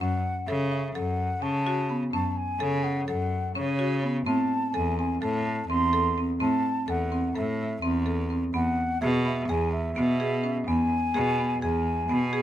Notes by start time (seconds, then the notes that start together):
0.00 F#2 C#4 F#5
0.47 C#3 A4 E5
0.71 C#4 E5
0.95 F#2 A4 F#5
1.41 C#3 C#4 A5
1.67 F#4
1.89 B3
2.13 F#2 C#4 A5
2.31 A5
2.37 G#5
2.60 C#3 A4
2.84 C#4 F#5
3.07 F#2 A4 F#5
3.55 C#3 C#4 C#5
3.79 F#4
4.03 B3
4.26 A2 C4 A5
4.73 E2 A4 G#5
4.99 C4 G#5
5.22 A2 A4 A5
5.68 E2 C4 C6
5.93 A4
6.17 C4
6.40 A2 C4 A5
6.87 E2 A4 F#5
7.12 C4
7.35 A2 A4 E5
7.82 E2 C4
8.06 A4
8.30 C4
8.54 E2 B3 F#5
9.01 B2 G#4 E5
9.25 B3 E5
9.48 E2 G#4 G#5
9.72 E5
9.96 B2 B3
10.20 G#4
10.44 C#4
10.67 E2 B3 G#5
11.14 B2 G#4
11.38 B3
11.62 E2 G#4 G#5
12.08 B2 B3
12.33 G#4